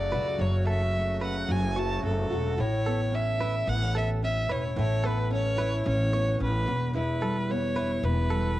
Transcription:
0.00 0.13 F#1 medium
0.00 0.38 F#2 medium
0.00 2.54 C#3 medium
0.00 1.48 F#3 medium
0.00 2.54 F#3 medium
0.00 0.94 A3 medium
0.00 2.54 A3 medium
0.00 0.67 C#4 medium
0.00 0.10 F#4 medium
0.00 2.54 F#4 medium
0.00 0.42 D5 loud
0.11 0.37 C#2 medium
0.11 1.75 F#4 medium
0.11 0.26 B4 medium
0.39 1.44 F#1 loud
0.39 2.58 F#2 medium
0.39 0.67 C#5 medium
0.67 1.20 C#4 medium
0.67 0.81 A4 medium
0.67 1.18 E5 loud
0.94 2.02 A3 medium
1.20 2.88 C#4 medium
1.20 1.36 B4 medium
1.20 1.53 F#5 loud
1.49 1.99 F#1 loud
1.49 2.64 F#3 medium
1.49 1.80 G#5 loud
1.76 2.29 F#4 medium
1.76 2.02 C#5 medium
1.76 2.05 A5 loud
2.03 2.29 F#1 medium
2.03 2.85 A3 medium
2.03 2.62 A4 loud
2.30 2.56 E1 medium
2.30 2.58 F#4 medium
2.58 3.63 A1 medium
2.58 4.75 A2 medium
2.58 3.39 E4 medium
2.58 3.16 C#5 loud
2.85 3.67 B3 medium
2.85 3.00 A4 medium
3.12 3.67 C#4 medium
3.12 3.70 E5 loud
3.40 4.49 E4 medium
3.40 3.54 B4 medium
3.67 4.45 A1 loud
3.67 3.82 B3 medium
3.67 3.95 F#5 loud
3.82 4.21 C#4 medium
3.95 5.03 B3 medium
3.95 4.21 A4 medium
3.95 4.09 E5 loud
4.22 5.29 C#4 medium
4.22 4.53 E5 loud
4.49 4.74 E1 medium
4.49 4.77 E4 medium
4.49 4.63 B4 medium
4.49 4.78 C#5 loud
4.76 5.81 A1 medium
4.76 6.67 A2 medium
4.76 5.57 E4 medium
4.76 5.08 C#5 loud
5.03 6.12 B3 medium
5.03 5.18 A4 medium
5.03 5.32 B4 loud
5.31 5.84 C#4 medium
5.31 5.83 C#5 loud
5.57 6.94 E4 medium
5.57 5.72 B4 medium
5.85 6.36 A1 loud
5.85 6.38 C#4 medium
5.85 6.38 C#5 loud
6.13 7.20 B3 medium
6.13 6.39 C#5 medium
6.39 6.65 A1 loud
6.39 6.73 C#4 medium
6.44 6.93 B4 loud
6.66 8.00 E1 medium
6.66 6.92 E2 medium
6.93 8.60 E2 medium
6.93 7.74 E4 medium
6.93 7.53 B4 loud
7.21 8.29 G3 medium
7.21 7.36 A4 medium
7.50 8.03 B3 medium
7.50 8.06 C#5 loud
7.75 8.60 E4 medium
7.75 7.90 B4 medium
8.03 8.60 E1 loud
8.03 8.58 B3 medium
8.03 8.60 B4 loud
8.30 8.60 G3 medium
8.30 8.56 A4 medium

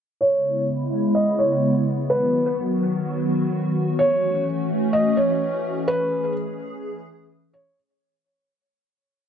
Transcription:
0.21 2.08 C#3 medium
0.21 2.08 G#3 medium
0.21 3.95 B3 medium
0.21 2.08 E4 medium
0.21 0.65 C#5 medium
1.15 1.37 D#5 medium
1.39 2.06 C#5 medium
2.10 3.97 D#3 medium
2.10 3.97 F#3 medium
2.10 5.84 F#4 medium
2.10 2.54 B4 medium
3.99 7.73 E3 medium
3.99 7.73 A3 medium
3.99 7.73 C#4 medium
3.99 4.43 C#5 medium
4.93 5.15 D#5 medium
5.17 5.84 C#5 medium
5.88 7.75 G#4 medium
5.88 6.32 B4 loud
7.53 7.76 C#5 medium

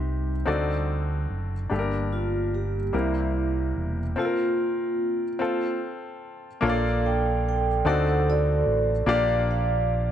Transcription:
0.00 0.43 C2 medium
0.00 0.43 C3 soft
0.00 1.27 G3 soft
0.00 1.27 C4 soft
0.00 0.30 D#4 medium
0.00 1.27 D#4 medium
0.00 0.30 G4 medium
0.00 0.34 C5 medium
0.46 1.25 D2 medium
0.46 1.66 D3 medium
0.46 1.53 C4 medium
0.46 1.53 D#4 medium
0.46 1.53 F#4 medium
0.46 1.54 A4 medium
0.46 1.54 D5 medium
1.30 1.68 F#1 medium
1.70 2.90 G1 medium
1.70 2.90 G2 soft
1.70 2.91 G3 soft
1.70 2.77 D4 medium
1.70 2.14 D4 medium
1.70 2.77 G4 medium
1.70 1.78 A4 soft
1.74 2.92 A#3 soft
1.79 2.81 A#4 medium
2.12 2.54 F4 medium
2.55 2.96 G4 medium
2.93 3.72 C2 medium
2.93 4.13 C3 soft
2.93 4.00 G3 soft
2.93 4.00 A#3 soft
2.93 4.00 C4 soft
2.93 4.00 E4 soft
2.93 3.73 E4 medium
2.93 4.00 A#4 medium
2.97 4.15 G3 soft
2.97 4.15 A#3 soft
3.76 4.14 E1 medium
4.16 5.23 C4 medium
4.16 5.23 F4 medium
4.16 5.78 F4 medium
4.16 4.24 A4 medium
4.20 5.79 A#3 medium
4.20 5.79 C4 medium
4.25 5.27 A#4 medium
5.39 6.45 C4 medium
5.39 6.46 F4 medium
5.39 6.47 A4 medium
6.61 7.81 A#1 loud
6.61 7.81 A#2 medium
6.61 7.67 A#3 medium
6.61 7.68 D4 medium
6.61 7.68 F4 medium
6.61 7.68 A4 medium
6.61 6.69 C#5 medium
6.65 7.82 A4 medium
6.65 7.82 D5 medium
6.65 7.07 F5 medium
6.69 7.72 D5 medium
7.06 7.43 G5 medium
7.49 7.88 G5 medium
7.85 8.62 D2 loud
7.85 9.04 D3 medium
7.85 8.90 C4 medium
7.85 8.91 D#4 medium
7.85 8.91 F#4 medium
7.85 8.91 A4 medium
7.85 8.28 A4 medium
7.85 9.05 C5 medium
7.85 8.91 D5 medium
7.89 8.25 F#5 medium
8.29 9.05 F#4 medium
8.29 9.05 A4 medium
8.29 9.09 D5 medium
8.66 9.04 A1 medium
9.06 10.12 A#1 loud
9.06 10.12 A#2 medium
9.06 10.12 A#3 medium
9.06 10.12 D4 medium
9.06 10.12 F4 medium
9.06 10.12 G4 medium
9.06 10.12 D5 medium
9.11 9.50 D5 medium
9.11 9.50 F5 medium
9.51 10.12 D5 medium
9.51 10.12 F5 medium

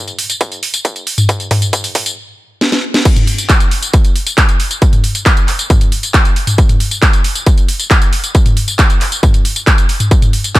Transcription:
0.08 closed hi-hat soft
0.08 tambourine soft
0.19 open hi-hat loud
0.30 closed hi-hat soft
0.30 tambourine medium
0.41 kick loud
0.41 closed hi-hat medium
0.41 tambourine medium
0.52 closed hi-hat soft
0.52 tambourine soft
0.63 open hi-hat loud
0.74 closed hi-hat soft
0.74 tambourine medium
0.85 kick loud
0.85 closed hi-hat medium
0.85 tambourine medium
0.96 closed hi-hat soft
0.96 tambourine soft
1.07 open hi-hat loud
1.18 closed hi-hat medium
1.18 mid tom medium
1.18 tambourine medium
1.29 kick loud
1.29 closed hi-hat medium
1.29 tambourine medium
1.40 closed hi-hat soft
1.40 tambourine soft
1.51 kick loud
1.51 open hi-hat loud
1.51 mid tom medium
1.62 closed hi-hat soft
1.62 tambourine medium
1.73 kick loud
1.73 closed hi-hat medium
1.73 tambourine medium
1.84 open hi-hat medium
1.84 tambourine soft
1.95 kick loud
1.95 open hi-hat loud
2.06 closed hi-hat soft
2.06 tambourine medium
2.61 snare medium
2.72 snare medium
2.94 snare medium
3.05 kick loud
3.05 closed hi-hat medium
3.05 crash loud
3.05 tambourine medium
3.16 closed hi-hat medium
3.16 mid tom medium
3.16 tambourine soft
3.27 open hi-hat loud
3.38 closed hi-hat medium
3.38 tambourine medium
3.49 kick loud
3.49 clap loud
3.49 closed hi-hat medium
3.49 tambourine medium
3.60 closed hi-hat medium
3.60 tambourine soft
3.71 open hi-hat medium
3.82 closed hi-hat medium
3.82 tambourine medium
3.94 kick loud
3.94 closed hi-hat medium
3.94 tambourine soft
4.05 closed hi-hat medium
4.05 tambourine soft
4.16 open hi-hat loud
4.27 closed hi-hat medium
4.27 tambourine medium
4.38 kick loud
4.38 clap loud
4.38 closed hi-hat medium
4.38 tambourine medium
4.49 closed hi-hat medium
4.49 tambourine soft
4.60 open hi-hat medium
4.71 closed hi-hat medium
4.71 tambourine medium
4.82 kick loud
4.82 closed hi-hat medium
4.82 tambourine medium
4.93 closed hi-hat medium
4.93 mid tom medium
4.93 tambourine soft
5.04 open hi-hat loud
5.15 closed hi-hat medium
5.15 tambourine medium
5.26 kick loud
5.26 clap loud
5.26 closed hi-hat medium
5.26 tambourine medium
5.37 closed hi-hat medium
5.37 tambourine soft
5.48 clap soft
5.48 open hi-hat loud
5.59 closed hi-hat medium
5.59 tambourine medium
5.70 kick loud
5.70 closed hi-hat medium
5.70 mid tom medium
5.70 tambourine medium
5.81 closed hi-hat medium
5.81 tambourine soft
5.92 open hi-hat loud
6.03 closed hi-hat medium
6.03 tambourine medium
6.14 kick loud
6.14 clap loud
6.14 closed hi-hat medium
6.14 tambourine medium
6.25 closed hi-hat medium
6.25 tambourine soft
6.36 open hi-hat medium
6.47 closed hi-hat medium
6.47 mid tom medium
6.47 tambourine medium
6.58 kick loud
6.58 closed hi-hat medium
6.58 tambourine medium
6.69 closed hi-hat soft
6.69 mid tom medium
6.69 tambourine soft
6.80 open hi-hat loud
6.91 closed hi-hat medium
6.91 tambourine medium
7.02 kick loud
7.02 clap loud
7.02 closed hi-hat medium
7.02 tambourine medium
7.13 closed hi-hat medium
7.13 tambourine soft
7.24 open hi-hat loud
7.35 closed hi-hat soft
7.35 tambourine medium
7.46 kick loud
7.46 closed hi-hat medium
7.46 tambourine soft
7.58 closed hi-hat medium
7.58 tambourine soft
7.69 open hi-hat loud
7.80 closed hi-hat medium
7.80 tambourine medium
7.91 kick loud
7.91 clap loud
7.91 closed hi-hat medium
7.91 tambourine medium
8.02 closed hi-hat medium
8.02 tambourine soft
8.13 open hi-hat loud
8.24 closed hi-hat soft
8.24 tambourine medium
8.35 kick loud
8.35 closed hi-hat medium
8.35 tambourine medium
8.46 closed hi-hat soft
8.46 mid tom medium
8.46 tambourine soft
8.57 open hi-hat loud
8.68 closed hi-hat medium
8.68 tambourine medium
8.79 kick loud
8.79 clap loud
8.79 closed hi-hat medium
8.79 tambourine medium
8.90 closed hi-hat medium
8.90 tambourine soft
9.01 clap soft
9.01 open hi-hat loud
9.12 closed hi-hat soft
9.12 tambourine medium
9.23 kick loud
9.23 closed hi-hat medium
9.23 mid tom medium
9.23 tambourine medium
9.34 closed hi-hat medium
9.34 tambourine soft
9.45 open hi-hat loud
9.56 closed hi-hat soft
9.56 tambourine medium
9.67 kick loud
9.67 clap loud
9.67 closed hi-hat medium
9.67 tambourine medium
9.78 closed hi-hat soft
9.78 tambourine soft
9.89 open hi-hat medium
10.00 closed hi-hat medium
10.00 mid tom medium
10.00 tambourine medium
10.11 kick loud
10.11 closed hi-hat medium
10.11 tambourine medium
10.22 closed hi-hat soft
10.22 mid tom medium
10.22 tambourine soft
10.33 open hi-hat loud
10.44 closed hi-hat soft
10.44 tambourine medium
10.55 kick loud
10.55 clap loud
10.55 closed hi-hat medium
10.55 tambourine medium

